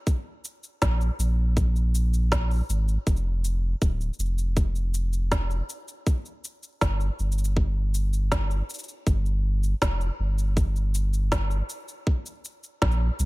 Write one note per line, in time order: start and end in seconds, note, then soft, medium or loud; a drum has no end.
0.07 kick loud
0.07 cabasa soft
0.45 cabasa medium
0.63 cabasa soft
0.82 1.10 A#1 medium
0.82 kick loud
0.82 snare medium
0.82 cabasa soft
1.01 cabasa soft
1.19 2.62 A#1 medium
1.19 cabasa medium
1.57 kick medium
1.57 cabasa soft
1.76 cabasa soft
1.95 cabasa medium
2.14 cabasa soft
2.32 kick medium
2.32 snare medium
2.32 cabasa soft
2.51 cabasa soft
2.53 cabasa soft
2.56 cabasa soft
2.58 cabasa soft
2.60 cabasa soft
2.63 cabasa soft
2.65 cabasa soft
2.67 2.97 G#1 medium
2.67 cabasa soft
2.70 cabasa medium
2.88 cabasa soft
3.07 3.74 F1 medium
3.07 kick loud
3.07 cabasa soft
3.16 cabasa soft
3.44 cabasa medium
3.82 4.10 D1 medium
3.82 kick loud
3.82 cabasa soft
4.01 cabasa soft
4.13 cabasa soft
4.19 5.62 F1 medium
4.19 cabasa medium
4.25 cabasa soft
4.38 cabasa soft
4.57 kick medium
4.57 cabasa soft
4.75 cabasa soft
4.94 cabasa medium
5.13 cabasa soft
5.32 kick medium
5.32 snare loud
5.32 cabasa soft
5.51 cabasa soft
5.69 cabasa medium
5.88 cabasa soft
6.07 kick loud
6.07 cabasa soft
6.25 cabasa soft
6.44 cabasa medium
6.63 cabasa soft
6.81 7.10 G1 medium
6.81 kick medium
6.81 snare medium
6.81 cabasa soft
7.00 cabasa soft
7.19 8.62 G1 medium
7.19 cabasa soft
7.32 cabasa soft
7.38 cabasa soft
7.44 cabasa medium
7.57 kick medium
7.94 cabasa medium
8.13 cabasa soft
8.32 kick medium
8.32 snare medium
8.32 cabasa soft
8.51 cabasa soft
8.70 cabasa medium
8.74 cabasa soft
8.79 cabasa soft
8.84 cabasa soft
8.88 cabasa soft
9.07 9.74 G1 medium
9.07 kick loud
9.07 cabasa soft
9.26 cabasa soft
9.63 cabasa soft
9.82 10.10 F1 medium
9.82 kick loud
9.82 snare medium
9.82 cabasa soft
10.01 cabasa soft
10.19 11.62 G1 medium
10.38 cabasa soft
10.57 kick medium
10.57 cabasa soft
10.76 cabasa soft
10.94 cabasa medium
11.13 cabasa soft
11.32 kick medium
11.32 snare medium
11.32 cabasa soft
11.51 cabasa soft
11.69 cabasa medium
11.88 cabasa soft
12.07 kick medium
12.26 cabasa soft
12.45 cabasa medium
12.63 cabasa soft
12.82 13.10 A#1 medium
12.82 kick loud
12.82 snare medium
12.91 cabasa soft
13.19 13.25 C2 medium
13.19 cabasa medium